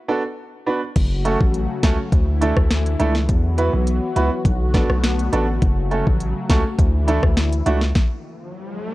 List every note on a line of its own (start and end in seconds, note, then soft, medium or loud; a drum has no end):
0.08 0.21 B3 medium
0.08 0.21 D4 medium
0.08 0.21 F#4 medium
0.08 0.21 A4 medium
0.66 0.79 B3 medium
0.66 0.79 D4 medium
0.66 0.79 F#4 medium
0.66 0.79 B4 medium
0.96 1.37 F#1 loud
0.96 2.11 C#3 medium
0.96 2.11 F#3 medium
0.96 2.11 A3 medium
0.96 2.11 F#4 medium
0.96 kick loud
0.96 closed hi-hat medium
0.96 crash loud
1.25 1.37 A3 medium
1.25 1.37 C#4 medium
1.25 1.37 F#4 medium
1.25 1.37 A4 loud
1.25 closed hi-hat medium
1.41 1.67 A1 loud
1.41 kick medium
1.54 closed hi-hat medium
1.83 1.97 C#2 medium
1.83 1.96 A3 medium
1.83 1.96 C#4 medium
1.83 1.96 F#4 medium
1.83 1.96 A4 loud
1.83 kick medium
1.83 snare loud
1.83 closed hi-hat medium
2.12 2.53 D2 loud
2.12 3.28 D3 medium
2.12 3.28 E3 medium
2.12 3.28 A3 medium
2.12 3.28 E4 medium
2.12 kick medium
2.12 closed hi-hat medium
2.41 2.54 A3 medium
2.41 2.54 D4 medium
2.41 2.54 E4 medium
2.41 2.54 A4 medium
2.41 closed hi-hat medium
2.57 2.96 D2 loud
2.57 kick loud
2.57 cross-stick loud
2.71 snare loud
2.71 closed hi-hat medium
2.86 closed hi-hat medium
2.99 3.30 C#2 medium
2.99 3.12 A3 medium
2.99 3.12 D4 medium
2.99 3.12 E4 medium
2.99 3.12 A4 medium
2.99 closed hi-hat medium
3.15 snare medium
3.29 3.70 E2 loud
3.29 4.44 E3 medium
3.29 4.44 F#3 medium
3.29 4.44 B3 medium
3.29 6.75 F#4 loud
3.29 kick loud
3.29 closed hi-hat medium
3.58 3.70 B3 medium
3.58 3.70 E4 medium
3.58 3.70 F#4 medium
3.58 3.70 B4 loud
3.58 closed hi-hat medium
3.73 4.00 B1 medium
3.87 closed hi-hat medium
4.16 4.30 C#2 medium
4.16 4.28 B3 medium
4.16 4.29 E4 medium
4.16 4.29 F#4 medium
4.16 4.29 B4 loud
4.16 closed hi-hat medium
4.45 4.86 B1 loud
4.45 5.61 D3 medium
4.45 7.91 A3 medium
4.45 5.61 B3 medium
4.45 kick loud
4.45 closed hi-hat medium
4.74 4.87 B3 medium
4.74 4.87 D4 medium
4.74 4.87 F#4 medium
4.74 4.87 A4 medium
4.74 kick loud
4.74 snare medium
4.74 closed hi-hat medium
4.90 5.29 B1 medium
4.90 cross-stick loud
5.04 snare loud
5.04 closed hi-hat medium
5.19 closed hi-hat medium
5.32 5.59 A1 medium
5.32 5.45 B3 medium
5.32 5.45 D4 medium
5.32 5.45 F#4 medium
5.32 5.45 A4 medium
5.32 closed hi-hat medium
5.62 6.03 F#1 loud
5.62 6.77 C#3 medium
5.62 6.77 F#3 medium
5.62 kick loud
5.62 closed hi-hat medium
5.91 6.03 A3 medium
5.91 6.03 C#4 medium
5.91 6.03 F#4 medium
5.91 6.03 A4 medium
5.91 closed hi-hat medium
6.07 6.33 A1 medium
6.07 kick medium
6.20 closed hi-hat medium
6.49 6.63 C#2 medium
6.49 6.62 A3 medium
6.49 6.62 C#4 medium
6.49 6.62 F#4 medium
6.49 6.62 A4 loud
6.49 kick medium
6.49 snare loud
6.49 closed hi-hat medium
6.78 7.19 D2 loud
6.78 7.94 D3 medium
6.78 7.94 E3 medium
6.78 7.94 E4 medium
6.78 kick loud
6.78 closed hi-hat medium
7.07 7.20 A3 medium
7.07 7.20 D4 medium
7.07 7.20 E4 medium
7.07 7.20 A4 loud
7.07 closed hi-hat medium
7.23 7.62 D2 medium
7.23 kick medium
7.23 cross-stick loud
7.37 snare loud
7.37 closed hi-hat medium
7.52 closed hi-hat medium
7.66 7.93 C#2 medium
7.66 7.78 A3 medium
7.66 7.78 D4 medium
7.66 7.78 E4 medium
7.66 7.78 F#4 medium
7.66 closed hi-hat medium
7.81 snare medium
7.95 kick loud
7.95 snare medium
7.95 riser medium